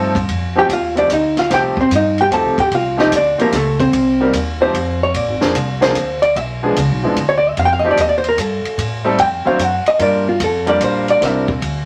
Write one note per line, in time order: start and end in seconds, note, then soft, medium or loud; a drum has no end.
0.00 0.28 G2 medium
0.00 0.13 F3 medium
0.00 0.13 A3 medium
0.00 0.13 C4 medium
0.00 0.13 D#4 medium
0.00 0.13 A4 medium
0.15 kick medium
0.15 ride medium
0.28 0.68 F2 medium
0.28 kick soft
0.28 ride medium
0.56 0.68 F3 medium
0.56 0.68 A3 medium
0.56 0.68 C4 medium
0.56 0.68 D#4 medium
0.56 0.68 G4 medium
0.56 0.70 G4 medium
0.56 0.70 G5 medium
0.69 1.09 D#2 medium
0.69 0.97 F4 medium
0.69 kick soft
0.69 hi-hat pedal medium
0.69 ride medium
0.73 0.98 F5 medium
0.95 1.08 F3 medium
0.95 1.08 A3 medium
0.95 1.08 C4 medium
0.95 1.10 D4 medium
0.95 1.08 D#4 medium
0.95 1.09 G4 medium
0.95 1.10 D5 medium
0.95 ride soft
1.09 1.49 D2 medium
1.09 1.38 D#4 medium
1.09 1.38 D#5 medium
1.09 kick soft
1.09 hi-hat pedal medium
1.09 ride medium
1.37 1.51 F4 medium
1.37 1.51 F5 medium
1.37 snare soft
1.37 ride soft
1.50 1.75 C2 medium
1.50 1.74 F3 medium
1.50 1.75 A3 medium
1.50 1.75 C4 medium
1.50 1.75 D#4 medium
1.50 1.75 G4 medium
1.50 kick soft
1.50 snare soft
1.50 ride medium
1.54 1.79 G4 medium
1.54 1.78 G5 loud
1.77 1.92 C5 medium
1.77 muted upright bass stroke soft
1.77 kick medium
1.81 1.92 C4 medium
1.90 2.30 G2 medium
1.90 kick soft
1.90 hi-hat pedal medium
1.90 ride medium
1.95 2.20 D#4 medium
1.95 2.19 D#5 medium
2.18 2.33 G4 medium
2.18 2.33 G5 loud
2.18 ride soft
2.31 2.44 D#2 medium
2.31 2.56 F3 medium
2.31 2.56 A3 medium
2.31 2.56 C4 medium
2.31 2.56 D#4 medium
2.31 2.56 G4 medium
2.31 2.59 A4 medium
2.31 2.59 A5 medium
2.31 kick soft
2.31 hi-hat pedal medium
2.31 ride medium
2.44 2.57 C2 medium
2.58 2.71 A1 medium
2.58 2.73 G4 medium
2.58 2.72 G5 medium
2.58 kick medium
2.58 ride soft
2.72 3.11 C2 medium
2.72 3.00 F4 medium
2.72 3.00 F5 medium
2.72 kick soft
2.72 ride medium
2.97 3.10 F3 medium
2.97 3.10 A3 medium
2.97 3.11 C4 medium
2.97 3.11 D#4 medium
2.97 3.13 D#4 medium
2.97 3.11 G4 medium
2.97 3.13 D#5 medium
2.97 snare soft
3.12 3.37 D2 medium
3.12 kick soft
3.12 hi-hat pedal medium
3.12 ride medium
3.16 3.41 D4 medium
3.16 3.41 D5 medium
3.38 3.51 F3 medium
3.38 3.51 A3 medium
3.38 3.53 A#3 medium
3.38 3.51 C4 medium
3.38 3.51 D#4 medium
3.38 3.51 G4 medium
3.38 3.53 A#4 medium
3.38 muted upright bass stroke soft
3.38 ride soft
3.52 3.92 C#2 medium
3.52 3.80 A4 medium
3.52 kick soft
3.52 snare soft
3.52 hi-hat pedal medium
3.52 ride medium
3.56 3.80 A3 medium
3.80 4.30 C4 medium
3.80 4.30 C5 medium
3.80 kick medium
3.80 ride soft
3.93 4.32 C2 medium
3.93 kick soft
3.93 ride medium
4.21 4.33 G3 medium
4.21 4.33 A#3 medium
4.21 4.33 C4 medium
4.21 4.33 D#4 medium
4.21 4.33 A#4 medium
4.33 4.73 D#2 medium
4.33 kick soft
4.33 hi-hat pedal medium
4.33 ride medium
4.61 4.73 F3 medium
4.61 4.73 A3 medium
4.61 4.73 C4 medium
4.61 4.73 D#4 medium
4.61 4.73 G4 medium
4.61 4.99 C5 medium
4.74 5.13 F2 medium
4.74 kick soft
4.74 ride medium
5.03 5.17 C#5 medium
5.14 5.27 A#1 medium
5.14 5.83 D5 loud
5.14 kick soft
5.14 ride medium
5.27 5.41 G#1 medium
5.41 5.54 F1 medium
5.41 5.53 F3 medium
5.41 5.54 A#3 medium
5.41 5.54 C4 medium
5.41 5.54 D4 medium
5.41 5.54 G#4 medium
5.41 snare medium
5.55 5.94 C2 medium
5.55 kick soft
5.55 hi-hat pedal medium
5.55 ride medium
5.81 5.94 F3 medium
5.81 5.94 A#3 medium
5.81 5.94 C4 medium
5.81 5.94 D4 medium
5.81 5.94 G#4 medium
5.81 6.20 C5 medium
5.81 snare medium
5.81 ride soft
5.95 6.34 D2 medium
5.95 kick soft
5.95 hi-hat pedal medium
5.95 ride medium
6.22 6.35 D5 medium
6.22 ride soft
6.36 6.75 B1 medium
6.36 7.00 E5 medium
6.36 kick soft
6.36 ride medium
6.63 6.75 F3 medium
6.63 6.75 G#3 medium
6.63 6.75 B3 medium
6.63 6.75 D4 medium
6.63 6.76 G#4 medium
6.76 6.90 C#2 loud
6.76 kick soft
6.76 hi-hat pedal medium
6.76 ride medium
6.90 7.04 B1 medium
7.03 7.16 G#1 medium
7.03 7.16 F3 medium
7.03 7.16 G#3 medium
7.03 7.16 B3 medium
7.03 7.16 D4 medium
7.03 7.16 E4 medium
7.16 7.56 D2 medium
7.16 kick soft
7.16 ride medium
7.29 7.37 C#5 medium
7.38 7.49 D5 medium
7.49 7.56 E5 medium
7.57 7.96 F2 medium
7.57 7.65 F5 medium
7.57 kick soft
7.57 ride medium
7.65 7.70 G5 loud
7.73 7.85 F5 medium
7.79 7.88 D#5 loud
7.84 7.96 F3 medium
7.84 7.97 A3 medium
7.84 7.97 C4 medium
7.84 7.97 D#4 medium
7.84 7.97 G4 medium
7.91 7.98 D5 medium
7.97 8.37 D#2 loud
7.97 8.09 D#5 loud
7.97 kick soft
7.97 hi-hat pedal medium
7.97 ride medium
8.09 8.17 D5 medium
8.18 8.28 C5 loud
8.24 ride soft
8.29 8.40 A#4 medium
8.37 8.63 G2 medium
8.37 8.79 A4 medium
8.37 kick soft
8.37 hi-hat pedal medium
8.37 ride medium
8.65 muted upright bass stroke soft
8.65 ride soft
8.78 9.17 A2 medium
8.78 kick soft
8.78 ride medium
9.04 9.17 G3 medium
9.04 9.17 A3 medium
9.04 9.17 C4 medium
9.04 9.17 D#4 medium
9.04 9.18 A4 medium
9.18 9.44 F2 medium
9.18 9.46 G5 medium
9.18 kick soft
9.18 ride medium
9.45 9.58 F#3 medium
9.45 9.58 A3 medium
9.45 9.58 C4 medium
9.45 9.58 D4 medium
9.45 9.58 C5 medium
9.45 9.62 F5 medium
9.45 muted upright bass stroke soft
9.59 9.84 F#2 medium
9.59 9.87 F#5 medium
9.59 kick soft
9.59 hi-hat pedal medium
9.59 ride medium
9.86 10.00 D#5 medium
9.86 muted upright bass stroke soft
9.86 ride soft
9.99 10.39 G2 medium
9.99 10.24 G3 medium
9.99 10.24 A#3 medium
9.99 10.24 D4 medium
9.99 10.24 F4 medium
9.99 10.24 A#4 medium
9.99 10.27 D5 medium
9.99 kick soft
9.99 ride medium
10.29 10.41 F4 medium
10.40 10.79 F2 medium
10.40 kick soft
10.40 hi-hat pedal medium
10.40 ride medium
10.44 10.68 A4 medium
10.66 11.18 G3 medium
10.66 11.18 A#3 medium
10.66 11.18 D4 medium
10.66 11.18 F4 medium
10.66 11.18 A#4 medium
10.66 10.81 D5 loud
10.66 ride soft
10.81 11.20 A#1 medium
10.81 11.09 C5 medium
10.81 kick soft
10.81 hi-hat pedal medium
10.81 ride medium
11.08 11.22 D5 medium
11.08 ride soft
11.20 11.60 C2 medium
11.20 11.45 G3 medium
11.20 11.45 C4 medium
11.20 11.45 D4 medium
11.20 11.45 E4 medium
11.20 11.46 A#4 medium
11.20 kick soft
11.20 snare soft
11.20 ride medium
11.25 11.85 E5 medium
11.48 kick medium
11.62 11.85 D2 loud
11.62 kick soft
11.62 ride medium